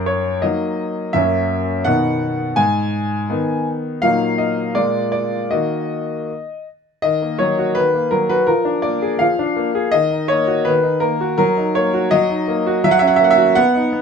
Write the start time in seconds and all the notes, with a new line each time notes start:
Already playing: F#2 A#4
0.06 C#5
0.42 F#3 A#3 D#4 D#5
1.13 F#2 F#3 A#3 C#4 E5
1.85 B2 D#3 B3 D#4 F#5
2.56 G#2 G#5
3.29 D#3 B3 D#4
4.02 A#2 F#3 A#3 D#4 F5
4.38 D#5
4.75 A#2 G#3 A#3 F4 D5
5.12 D5
5.51 D#3 A#3 F#4 D#5
7.02 D#3 D#5
7.22 A#3
7.39 F#3 C#5
7.59 F#4
7.75 D#3 B4
7.94 A#3
8.11 F#3 A#4
8.29 F#4 B4
8.47 F3 A#4
8.65 D4
8.82 A#3 D5
9.02 G#4
9.19 F3 F5
9.39 D4
9.57 A#3
9.75 G#4
9.91 D#3 D#5
10.11 D#4
10.28 A#3 C#5
10.47 F#4
10.65 D#3 B4
10.83 D#4
11.00 A#3 A#4
11.21 F#4
11.38 F#3 A#4
11.57 D#4
11.75 A#3 C#5
11.94 F#4
12.11 F#3 D#5
12.30 D#4
12.48 A#3
12.66 F#4
12.84 F#3 E5
12.91 F#5
12.99 C#4 E5
13.07 F#5
13.16 E5
13.21 A#3 F#5
13.31 E5
13.38 F#4
13.55 B3 F#5
13.75 D#4
13.93 B3